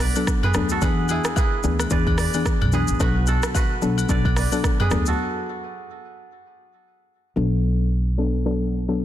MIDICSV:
0, 0, Header, 1, 5, 480
1, 0, Start_track
1, 0, Tempo, 545455
1, 722, Time_signature, 4, 2, 24, 8
1, 7963, End_track
2, 0, Start_track
2, 0, Title_t, "Kora"
2, 0, Program_c, 0, 46
2, 0, Note_on_c, 0, 66, 74
2, 0, Note_on_c, 0, 69, 72
2, 7, Note_on_c, 0, 74, 75
2, 15, Note_on_c, 0, 71, 61
2, 207, Note_off_c, 0, 69, 0
2, 385, Note_off_c, 0, 71, 0
2, 389, Note_on_c, 0, 71, 75
2, 396, Note_on_c, 0, 68, 60
2, 579, Note_off_c, 0, 66, 0
2, 628, Note_on_c, 0, 69, 82
2, 636, Note_on_c, 0, 66, 64
2, 681, Note_off_c, 0, 68, 0
2, 726, Note_off_c, 0, 71, 0
2, 730, Note_on_c, 0, 71, 113
2, 736, Note_on_c, 0, 68, 87
2, 789, Note_off_c, 0, 69, 0
2, 967, Note_off_c, 0, 68, 0
2, 971, Note_on_c, 0, 68, 82
2, 978, Note_on_c, 0, 64, 66
2, 982, Note_off_c, 0, 74, 0
2, 1207, Note_off_c, 0, 71, 0
2, 1210, Note_on_c, 0, 71, 92
2, 1215, Note_off_c, 0, 68, 0
2, 1218, Note_on_c, 0, 68, 71
2, 1690, Note_on_c, 0, 74, 94
2, 1693, Note_off_c, 0, 71, 0
2, 1697, Note_on_c, 0, 71, 74
2, 1922, Note_off_c, 0, 66, 0
2, 1926, Note_off_c, 0, 74, 0
2, 1929, Note_on_c, 0, 74, 83
2, 1932, Note_off_c, 0, 71, 0
2, 1936, Note_on_c, 0, 71, 62
2, 2357, Note_off_c, 0, 64, 0
2, 2405, Note_off_c, 0, 71, 0
2, 2408, Note_on_c, 0, 71, 86
2, 2411, Note_off_c, 0, 68, 0
2, 2415, Note_on_c, 0, 68, 68
2, 2647, Note_off_c, 0, 71, 0
2, 2651, Note_on_c, 0, 71, 102
2, 2658, Note_on_c, 0, 66, 81
2, 2890, Note_on_c, 0, 69, 74
2, 2893, Note_off_c, 0, 66, 0
2, 2897, Note_on_c, 0, 66, 55
2, 2904, Note_off_c, 0, 74, 0
2, 2943, Note_off_c, 0, 68, 0
2, 3128, Note_off_c, 0, 71, 0
2, 3131, Note_on_c, 0, 71, 98
2, 3135, Note_off_c, 0, 66, 0
2, 3138, Note_on_c, 0, 66, 75
2, 3611, Note_on_c, 0, 74, 89
2, 3615, Note_off_c, 0, 71, 0
2, 3618, Note_on_c, 0, 71, 67
2, 3849, Note_off_c, 0, 74, 0
2, 3852, Note_on_c, 0, 74, 77
2, 3855, Note_off_c, 0, 71, 0
2, 3859, Note_on_c, 0, 71, 60
2, 4049, Note_off_c, 0, 69, 0
2, 4226, Note_off_c, 0, 71, 0
2, 4230, Note_on_c, 0, 71, 74
2, 4236, Note_on_c, 0, 68, 62
2, 4425, Note_off_c, 0, 66, 0
2, 4469, Note_on_c, 0, 69, 78
2, 4477, Note_on_c, 0, 66, 60
2, 4522, Note_off_c, 0, 68, 0
2, 4827, Note_off_c, 0, 74, 0
2, 5312, Note_off_c, 0, 71, 0
2, 5629, Note_off_c, 0, 69, 0
2, 5763, Note_off_c, 0, 66, 0
2, 7963, End_track
3, 0, Start_track
3, 0, Title_t, "Synth pluck"
3, 0, Program_c, 1, 84
3, 140, Note_on_c, 1, 54, 78
3, 142, Note_on_c, 1, 59, 74
3, 144, Note_on_c, 1, 62, 74
3, 146, Note_on_c, 1, 69, 93
3, 254, Note_off_c, 1, 54, 0
3, 255, Note_off_c, 1, 59, 0
3, 256, Note_off_c, 1, 62, 0
3, 257, Note_off_c, 1, 69, 0
3, 480, Note_on_c, 1, 54, 75
3, 482, Note_on_c, 1, 59, 73
3, 483, Note_on_c, 1, 62, 71
3, 485, Note_on_c, 1, 69, 84
3, 629, Note_off_c, 1, 54, 0
3, 630, Note_off_c, 1, 59, 0
3, 631, Note_off_c, 1, 62, 0
3, 632, Note_off_c, 1, 69, 0
3, 718, Note_on_c, 1, 52, 94
3, 720, Note_on_c, 1, 59, 83
3, 722, Note_on_c, 1, 62, 83
3, 724, Note_on_c, 1, 68, 98
3, 1168, Note_off_c, 1, 52, 0
3, 1169, Note_off_c, 1, 59, 0
3, 1170, Note_off_c, 1, 62, 0
3, 1171, Note_off_c, 1, 68, 0
3, 1439, Note_on_c, 1, 52, 82
3, 1440, Note_on_c, 1, 59, 70
3, 1442, Note_on_c, 1, 62, 72
3, 1444, Note_on_c, 1, 68, 91
3, 1589, Note_off_c, 1, 52, 0
3, 1589, Note_off_c, 1, 59, 0
3, 1590, Note_off_c, 1, 62, 0
3, 1591, Note_off_c, 1, 68, 0
3, 1682, Note_on_c, 1, 52, 98
3, 1683, Note_on_c, 1, 59, 88
3, 1685, Note_on_c, 1, 62, 85
3, 1687, Note_on_c, 1, 68, 102
3, 1830, Note_off_c, 1, 52, 0
3, 1831, Note_off_c, 1, 59, 0
3, 1831, Note_off_c, 1, 62, 0
3, 1833, Note_off_c, 1, 68, 0
3, 2059, Note_on_c, 1, 52, 80
3, 2062, Note_on_c, 1, 59, 73
3, 2062, Note_on_c, 1, 62, 74
3, 2064, Note_on_c, 1, 68, 87
3, 2173, Note_off_c, 1, 52, 0
3, 2175, Note_off_c, 1, 59, 0
3, 2175, Note_off_c, 1, 62, 0
3, 2176, Note_off_c, 1, 68, 0
3, 2400, Note_on_c, 1, 52, 75
3, 2401, Note_on_c, 1, 59, 70
3, 2404, Note_on_c, 1, 62, 72
3, 2405, Note_on_c, 1, 68, 82
3, 2549, Note_off_c, 1, 52, 0
3, 2549, Note_off_c, 1, 59, 0
3, 2551, Note_off_c, 1, 62, 0
3, 2551, Note_off_c, 1, 68, 0
3, 2640, Note_on_c, 1, 54, 92
3, 2641, Note_on_c, 1, 59, 86
3, 2642, Note_on_c, 1, 62, 87
3, 2643, Note_on_c, 1, 69, 100
3, 3089, Note_off_c, 1, 54, 0
3, 3090, Note_off_c, 1, 59, 0
3, 3090, Note_off_c, 1, 62, 0
3, 3091, Note_off_c, 1, 69, 0
3, 3359, Note_on_c, 1, 54, 80
3, 3361, Note_on_c, 1, 59, 73
3, 3362, Note_on_c, 1, 62, 76
3, 3363, Note_on_c, 1, 69, 87
3, 3509, Note_off_c, 1, 54, 0
3, 3510, Note_off_c, 1, 59, 0
3, 3510, Note_off_c, 1, 62, 0
3, 3510, Note_off_c, 1, 69, 0
3, 3598, Note_on_c, 1, 54, 96
3, 3600, Note_on_c, 1, 59, 87
3, 3601, Note_on_c, 1, 62, 87
3, 3604, Note_on_c, 1, 69, 111
3, 3748, Note_off_c, 1, 54, 0
3, 3749, Note_off_c, 1, 59, 0
3, 3750, Note_off_c, 1, 62, 0
3, 3751, Note_off_c, 1, 69, 0
3, 3978, Note_on_c, 1, 54, 81
3, 3979, Note_on_c, 1, 59, 70
3, 3980, Note_on_c, 1, 62, 76
3, 3983, Note_on_c, 1, 69, 90
3, 4092, Note_off_c, 1, 54, 0
3, 4093, Note_off_c, 1, 59, 0
3, 4094, Note_off_c, 1, 62, 0
3, 4095, Note_off_c, 1, 69, 0
3, 4318, Note_on_c, 1, 54, 74
3, 4319, Note_on_c, 1, 59, 70
3, 4321, Note_on_c, 1, 62, 73
3, 4322, Note_on_c, 1, 69, 87
3, 4468, Note_off_c, 1, 54, 0
3, 4469, Note_off_c, 1, 59, 0
3, 4470, Note_off_c, 1, 62, 0
3, 4470, Note_off_c, 1, 69, 0
3, 6476, Note_on_c, 1, 54, 83
3, 6479, Note_on_c, 1, 59, 78
3, 6480, Note_on_c, 1, 62, 81
3, 6482, Note_on_c, 1, 69, 97
3, 6927, Note_off_c, 1, 54, 0
3, 6928, Note_off_c, 1, 59, 0
3, 6929, Note_off_c, 1, 62, 0
3, 6930, Note_off_c, 1, 69, 0
3, 7194, Note_on_c, 1, 54, 74
3, 7197, Note_on_c, 1, 59, 71
3, 7199, Note_on_c, 1, 62, 71
3, 7201, Note_on_c, 1, 69, 81
3, 7346, Note_off_c, 1, 54, 0
3, 7347, Note_off_c, 1, 59, 0
3, 7349, Note_off_c, 1, 62, 0
3, 7350, Note_off_c, 1, 69, 0
3, 7438, Note_on_c, 1, 54, 92
3, 7440, Note_on_c, 1, 59, 82
3, 7442, Note_on_c, 1, 62, 81
3, 7445, Note_on_c, 1, 69, 100
3, 7588, Note_off_c, 1, 54, 0
3, 7589, Note_off_c, 1, 59, 0
3, 7590, Note_off_c, 1, 62, 0
3, 7591, Note_off_c, 1, 69, 0
3, 7817, Note_on_c, 1, 54, 75
3, 7820, Note_on_c, 1, 59, 72
3, 7820, Note_on_c, 1, 62, 69
3, 7823, Note_on_c, 1, 69, 84
3, 7932, Note_off_c, 1, 54, 0
3, 7933, Note_off_c, 1, 59, 0
3, 7934, Note_off_c, 1, 62, 0
3, 7935, Note_off_c, 1, 69, 0
3, 7963, End_track
4, 0, Start_track
4, 0, Title_t, "Upright bass"
4, 0, Program_c, 2, 32
4, 483, Note_on_c, 2, 38, 96
4, 677, Note_off_c, 2, 38, 0
4, 720, Note_on_c, 2, 40, 104
4, 1029, Note_off_c, 2, 40, 0
4, 1443, Note_on_c, 2, 38, 97
4, 1638, Note_off_c, 2, 38, 0
4, 1680, Note_on_c, 2, 40, 111
4, 1989, Note_off_c, 2, 40, 0
4, 2303, Note_on_c, 2, 35, 86
4, 2497, Note_off_c, 2, 35, 0
4, 2541, Note_on_c, 2, 33, 88
4, 2623, Note_off_c, 2, 33, 0
4, 2642, Note_on_c, 2, 35, 116
4, 2950, Note_off_c, 2, 35, 0
4, 3363, Note_on_c, 2, 35, 92
4, 3557, Note_off_c, 2, 35, 0
4, 3601, Note_on_c, 2, 35, 106
4, 3910, Note_off_c, 2, 35, 0
4, 4323, Note_on_c, 2, 38, 95
4, 4517, Note_off_c, 2, 38, 0
4, 6482, Note_on_c, 2, 35, 78
4, 7963, Note_off_c, 2, 35, 0
4, 7963, End_track
5, 0, Start_track
5, 0, Title_t, "Drums"
5, 0, Note_on_c, 9, 37, 99
5, 1, Note_on_c, 9, 46, 63
5, 1, Note_on_c, 9, 82, 63
5, 85, Note_off_c, 9, 37, 0
5, 89, Note_off_c, 9, 46, 0
5, 89, Note_off_c, 9, 82, 0
5, 135, Note_on_c, 9, 82, 80
5, 140, Note_on_c, 9, 67, 76
5, 223, Note_off_c, 9, 82, 0
5, 228, Note_off_c, 9, 67, 0
5, 240, Note_on_c, 9, 36, 101
5, 240, Note_on_c, 9, 37, 96
5, 242, Note_on_c, 9, 82, 77
5, 328, Note_off_c, 9, 36, 0
5, 328, Note_off_c, 9, 37, 0
5, 330, Note_off_c, 9, 82, 0
5, 379, Note_on_c, 9, 45, 93
5, 382, Note_on_c, 9, 67, 88
5, 467, Note_off_c, 9, 45, 0
5, 470, Note_off_c, 9, 67, 0
5, 474, Note_on_c, 9, 82, 62
5, 480, Note_on_c, 9, 37, 105
5, 562, Note_off_c, 9, 82, 0
5, 568, Note_off_c, 9, 37, 0
5, 609, Note_on_c, 9, 82, 82
5, 697, Note_off_c, 9, 82, 0
5, 718, Note_on_c, 9, 82, 81
5, 721, Note_on_c, 9, 36, 115
5, 722, Note_on_c, 9, 67, 80
5, 806, Note_off_c, 9, 82, 0
5, 809, Note_off_c, 9, 36, 0
5, 810, Note_off_c, 9, 67, 0
5, 956, Note_on_c, 9, 82, 64
5, 960, Note_on_c, 9, 67, 81
5, 1044, Note_off_c, 9, 82, 0
5, 1048, Note_off_c, 9, 67, 0
5, 1096, Note_on_c, 9, 82, 77
5, 1098, Note_on_c, 9, 37, 127
5, 1184, Note_off_c, 9, 82, 0
5, 1186, Note_off_c, 9, 37, 0
5, 1197, Note_on_c, 9, 67, 80
5, 1197, Note_on_c, 9, 77, 81
5, 1202, Note_on_c, 9, 36, 100
5, 1205, Note_on_c, 9, 82, 85
5, 1285, Note_off_c, 9, 67, 0
5, 1285, Note_off_c, 9, 77, 0
5, 1290, Note_off_c, 9, 36, 0
5, 1293, Note_off_c, 9, 82, 0
5, 1439, Note_on_c, 9, 82, 52
5, 1527, Note_off_c, 9, 82, 0
5, 1580, Note_on_c, 9, 37, 95
5, 1581, Note_on_c, 9, 67, 76
5, 1584, Note_on_c, 9, 82, 77
5, 1668, Note_off_c, 9, 37, 0
5, 1669, Note_off_c, 9, 67, 0
5, 1672, Note_off_c, 9, 82, 0
5, 1676, Note_on_c, 9, 82, 85
5, 1680, Note_on_c, 9, 36, 119
5, 1764, Note_off_c, 9, 82, 0
5, 1768, Note_off_c, 9, 36, 0
5, 1819, Note_on_c, 9, 36, 98
5, 1824, Note_on_c, 9, 67, 78
5, 1907, Note_off_c, 9, 36, 0
5, 1912, Note_off_c, 9, 67, 0
5, 1917, Note_on_c, 9, 37, 102
5, 1920, Note_on_c, 9, 46, 63
5, 1920, Note_on_c, 9, 82, 64
5, 2005, Note_off_c, 9, 37, 0
5, 2008, Note_off_c, 9, 46, 0
5, 2008, Note_off_c, 9, 82, 0
5, 2056, Note_on_c, 9, 82, 79
5, 2062, Note_on_c, 9, 67, 78
5, 2144, Note_off_c, 9, 82, 0
5, 2150, Note_off_c, 9, 67, 0
5, 2160, Note_on_c, 9, 36, 99
5, 2162, Note_on_c, 9, 37, 98
5, 2163, Note_on_c, 9, 82, 77
5, 2248, Note_off_c, 9, 36, 0
5, 2250, Note_off_c, 9, 37, 0
5, 2251, Note_off_c, 9, 82, 0
5, 2301, Note_on_c, 9, 45, 94
5, 2304, Note_on_c, 9, 67, 86
5, 2389, Note_off_c, 9, 45, 0
5, 2392, Note_off_c, 9, 67, 0
5, 2396, Note_on_c, 9, 82, 63
5, 2484, Note_off_c, 9, 82, 0
5, 2532, Note_on_c, 9, 82, 82
5, 2620, Note_off_c, 9, 82, 0
5, 2640, Note_on_c, 9, 82, 78
5, 2641, Note_on_c, 9, 36, 113
5, 2645, Note_on_c, 9, 67, 80
5, 2728, Note_off_c, 9, 82, 0
5, 2729, Note_off_c, 9, 36, 0
5, 2733, Note_off_c, 9, 67, 0
5, 2875, Note_on_c, 9, 82, 62
5, 2882, Note_on_c, 9, 67, 80
5, 2963, Note_off_c, 9, 82, 0
5, 2970, Note_off_c, 9, 67, 0
5, 3017, Note_on_c, 9, 82, 78
5, 3020, Note_on_c, 9, 37, 127
5, 3105, Note_off_c, 9, 82, 0
5, 3108, Note_off_c, 9, 37, 0
5, 3119, Note_on_c, 9, 67, 81
5, 3119, Note_on_c, 9, 77, 83
5, 3122, Note_on_c, 9, 36, 100
5, 3126, Note_on_c, 9, 82, 87
5, 3207, Note_off_c, 9, 67, 0
5, 3207, Note_off_c, 9, 77, 0
5, 3210, Note_off_c, 9, 36, 0
5, 3214, Note_off_c, 9, 82, 0
5, 3361, Note_on_c, 9, 82, 54
5, 3449, Note_off_c, 9, 82, 0
5, 3501, Note_on_c, 9, 67, 82
5, 3506, Note_on_c, 9, 82, 74
5, 3589, Note_off_c, 9, 67, 0
5, 3594, Note_off_c, 9, 82, 0
5, 3600, Note_on_c, 9, 82, 82
5, 3602, Note_on_c, 9, 36, 119
5, 3688, Note_off_c, 9, 82, 0
5, 3690, Note_off_c, 9, 36, 0
5, 3741, Note_on_c, 9, 36, 97
5, 3745, Note_on_c, 9, 67, 79
5, 3829, Note_off_c, 9, 36, 0
5, 3833, Note_off_c, 9, 67, 0
5, 3841, Note_on_c, 9, 37, 98
5, 3844, Note_on_c, 9, 46, 63
5, 3844, Note_on_c, 9, 82, 64
5, 3929, Note_off_c, 9, 37, 0
5, 3932, Note_off_c, 9, 46, 0
5, 3932, Note_off_c, 9, 82, 0
5, 3978, Note_on_c, 9, 82, 80
5, 3980, Note_on_c, 9, 67, 75
5, 4066, Note_off_c, 9, 82, 0
5, 4068, Note_off_c, 9, 67, 0
5, 4082, Note_on_c, 9, 36, 97
5, 4084, Note_on_c, 9, 37, 97
5, 4085, Note_on_c, 9, 82, 76
5, 4170, Note_off_c, 9, 36, 0
5, 4172, Note_off_c, 9, 37, 0
5, 4173, Note_off_c, 9, 82, 0
5, 4222, Note_on_c, 9, 67, 90
5, 4225, Note_on_c, 9, 45, 92
5, 4310, Note_off_c, 9, 67, 0
5, 4313, Note_off_c, 9, 45, 0
5, 4319, Note_on_c, 9, 82, 61
5, 4324, Note_on_c, 9, 37, 106
5, 4407, Note_off_c, 9, 82, 0
5, 4412, Note_off_c, 9, 37, 0
5, 4453, Note_on_c, 9, 82, 84
5, 4541, Note_off_c, 9, 82, 0
5, 7963, End_track
0, 0, End_of_file